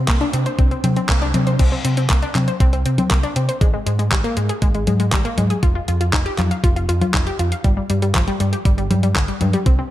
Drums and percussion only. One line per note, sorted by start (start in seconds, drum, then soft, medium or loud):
0.08 kick loud
0.08 clap loud
0.08 closed hi-hat medium
0.21 closed hi-hat soft
0.33 closed hi-hat medium
0.46 closed hi-hat medium
0.59 kick loud
0.59 closed hi-hat medium
0.71 closed hi-hat soft
0.84 closed hi-hat medium
0.84 high conga medium
0.96 closed hi-hat medium
1.09 kick loud
1.09 clap loud
1.09 closed hi-hat medium
1.22 closed hi-hat soft
1.34 closed hi-hat medium
1.34 high conga medium
1.47 closed hi-hat medium
1.59 kick loud
1.59 closed hi-hat medium
1.59 crash loud
1.85 closed hi-hat medium
1.97 closed hi-hat medium
2.10 kick loud
2.10 clap loud
2.10 closed hi-hat medium
2.22 closed hi-hat soft
2.35 clap medium
2.35 closed hi-hat medium
2.35 high conga medium
2.48 closed hi-hat medium
2.60 kick loud
2.60 closed hi-hat medium
2.73 closed hi-hat soft
2.86 closed hi-hat medium
2.98 closed hi-hat medium
2.98 high conga medium
3.11 kick loud
3.11 clap loud
3.11 closed hi-hat medium
3.23 closed hi-hat soft
3.36 closed hi-hat medium
3.49 closed hi-hat medium
3.61 kick loud
3.61 closed hi-hat medium
3.87 closed hi-hat medium
3.99 closed hi-hat medium
4.12 kick loud
4.12 clap loud
4.12 closed hi-hat medium
4.24 closed hi-hat soft
4.37 closed hi-hat medium
4.49 closed hi-hat medium
4.62 kick loud
4.62 closed hi-hat medium
4.75 closed hi-hat soft
4.87 closed hi-hat medium
4.87 high conga medium
5.00 closed hi-hat medium
5.12 kick loud
5.12 clap loud
5.12 closed hi-hat medium
5.25 closed hi-hat soft
5.38 closed hi-hat medium
5.38 high conga medium
5.50 closed hi-hat medium
5.63 kick loud
5.63 closed hi-hat medium
5.88 closed hi-hat medium
6.01 closed hi-hat medium
6.13 kick loud
6.13 clap loud
6.13 closed hi-hat medium
6.26 closed hi-hat soft
6.38 clap medium
6.38 closed hi-hat medium
6.38 high conga medium
6.51 closed hi-hat medium
6.64 kick loud
6.64 closed hi-hat medium
6.76 closed hi-hat soft
6.89 closed hi-hat medium
7.01 closed hi-hat soft
7.01 high conga medium
7.14 kick loud
7.14 clap loud
7.14 closed hi-hat medium
7.27 closed hi-hat soft
7.39 closed hi-hat medium
7.52 closed hi-hat medium
7.64 kick loud
7.64 closed hi-hat medium
7.90 closed hi-hat medium
8.02 closed hi-hat soft
8.15 kick loud
8.15 clap loud
8.15 closed hi-hat medium
8.28 closed hi-hat soft
8.40 closed hi-hat medium
8.53 closed hi-hat medium
8.65 kick loud
8.65 closed hi-hat medium
8.78 closed hi-hat soft
8.91 closed hi-hat medium
8.91 high conga medium
9.03 closed hi-hat medium
9.16 kick loud
9.16 clap loud
9.16 closed hi-hat medium
9.28 closed hi-hat soft
9.41 closed hi-hat medium
9.41 high conga medium
9.53 closed hi-hat soft
9.66 kick loud
9.66 closed hi-hat medium